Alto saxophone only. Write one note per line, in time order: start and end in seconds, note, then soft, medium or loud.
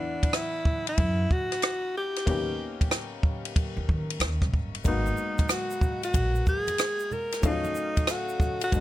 0.00 0.37 D4 medium
0.36 0.88 E4 medium
0.89 1.34 E4 medium
1.32 1.96 F#4 medium
1.97 2.89 G4 medium
4.87 5.47 D#4 medium
5.51 6.00 F#4 medium
6.05 6.44 F#4 loud
6.49 7.15 G#4 loud
7.13 7.48 A#4 loud
7.47 8.12 D#4 medium
8.11 8.63 F#4 medium
8.64 8.80 F#4 loud